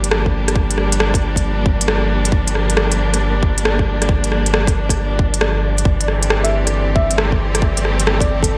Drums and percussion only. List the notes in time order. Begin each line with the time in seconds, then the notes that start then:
0.04 closed hi-hat
0.11 cross-stick
0.26 kick
0.48 cross-stick, closed hi-hat
0.56 kick
0.71 closed hi-hat
0.78 cross-stick
0.92 closed hi-hat
1.00 cross-stick
1.14 kick, closed hi-hat
1.36 kick, closed hi-hat
1.66 kick
1.81 closed hi-hat
1.88 cross-stick
2.25 closed hi-hat
2.32 kick
2.48 closed hi-hat
2.55 cross-stick
2.70 closed hi-hat
2.77 cross-stick
2.92 closed hi-hat
3.14 cross-stick, closed hi-hat
3.43 kick
3.58 closed hi-hat
3.65 cross-stick
3.79 kick
4.02 cross-stick, closed hi-hat
4.09 kick
4.24 closed hi-hat
4.32 cross-stick
4.46 closed hi-hat
4.54 cross-stick
4.67 kick, closed hi-hat
4.89 kick, cross-stick, closed hi-hat
5.19 kick
5.34 closed hi-hat
5.41 cross-stick
5.78 closed hi-hat
5.85 kick
6.01 closed hi-hat
6.08 cross-stick
6.23 closed hi-hat
6.30 cross-stick
6.45 closed hi-hat
6.67 cross-stick, closed hi-hat
6.96 kick
7.11 closed hi-hat
7.18 cross-stick
7.32 kick
7.55 cross-stick, closed hi-hat
7.62 kick
7.77 closed hi-hat
7.85 cross-stick
8.00 closed hi-hat
8.07 cross-stick
8.21 kick, closed hi-hat
8.43 kick, closed hi-hat